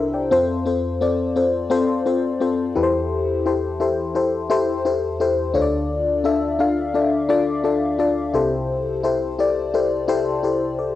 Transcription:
fm electric piano
Already playing: C2 C3 D4 E4 G4 A4 A#4 C5 E5
0.14 D5 G5
0.31 F2 C4 F4 A4 C5
0.66 C4 F4 A4 C5
1.01 C4 F4 A4 D5
1.36 C4 F4 A4 C5
1.70 C4 F4 A4 C5
2.06 C4 F4 A4 C5
2.40 C4 F4 A4 C5
2.75 E2 E3 E4 G4 A4 B4
2.83 C5
3.46 E4 G4 A4 C5
3.80 E4 G4 A4 C5
4.15 E4 G4 A4 C5
4.50 E4 G4 A4 C5
4.85 E4 G4 A4 C5
5.20 E4 G4 A4 C5
5.54 D2 D3 D4 F4 A4 C#5
5.62 D5
6.24 D4 F4 A4 E5
6.59 D4 F4 A4 F5
6.94 D4 F4 A4 D5
7.29 D4 F4 A4 D5
7.64 D4 F4 A4 D5
7.99 D4 F4 A4 D5
8.34 C2 C3 E4 G4 A4 C5
9.03 E4 G4 A4 C5
9.39 E4 G4 A4 D5
9.74 E4 G4 A4 C5
10.08 E4 G4 A4 C5
10.43 E4 G4 A4 C5
10.79 A4 D5

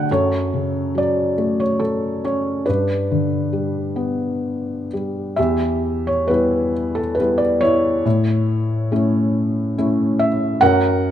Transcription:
felt piano
Already playing: D3 F#3 A3 F#5 A5
0.11 F#2 A4 C#5
0.54 C#3
0.95 F#3 D5
1.38 A3
1.60 C#5
1.80 A4
2.24 C#4 C#5
2.65 G2 D4 B4
3.11 D3
3.53 G3
3.96 B3
4.93 G3
5.36 E2 G4 E5
6.07 C#5
6.28 G3 B3 E4 B4
6.95 A4
7.15 B4
7.19 G3 B3 E4
7.38 D5
7.61 E4 C#5
8.05 A2
8.92 A3 C#4 E4
9.78 A3 C#4 E4
10.19 E5
10.61 F#2 A#4 F#5

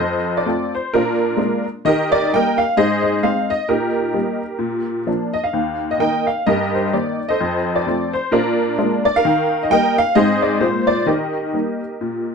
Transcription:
honky-tonk piano
Already playing: A4 C5 D#5
0.00 F2
0.37 D5
0.46 A3 C4 F4
0.75 C5
0.94 A#2 D4 F4 A#4
1.37 G#3 A#3 D4
1.85 D#3 G4 A#4 D#5
2.12 D5
2.34 G3 A#3 D#4 A#4 D#5 G5
2.58 F5
2.77 G#2 G#4 C5 D#5
3.02 D#5
3.23 G#3 C4 D#4 F5
3.50 D#5
3.68 A#2 D#4 G4 A#4
4.14 G3 A#3 D#4
4.59 A#2
5.07 F3 A#3 D4
5.33 D#5
5.44 F5
5.53 D#2
5.91 D#5
5.99 D#3 A#3 D#4 A#4 D#5 G5
6.27 F5
6.46 G2 G4 A#4 D#5
6.74 C5
6.93 D#3 A#3 D#4 D5
7.29 A4 C5 D#5
7.41 F2
7.76 D5
7.87 F3 A3 C4
8.13 C5
8.31 A#2 D4 F4 A#4
8.79 G#3 A#3 D4
9.05 D5
9.16 A#4 F5
9.25 D#3
9.63 D#5
9.70 G3 A#3 D#4 A#4 D#5 G5
9.98 F5
10.15 G#2 G#3 C4 D#4 G#4 C5 D#5
10.42 D5
10.60 A#2 G#3 A#3 F4 C5
10.87 D5
11.06 D#3 G4 A#4 D#5
11.53 G3 A#3 D#4
12.01 A#2

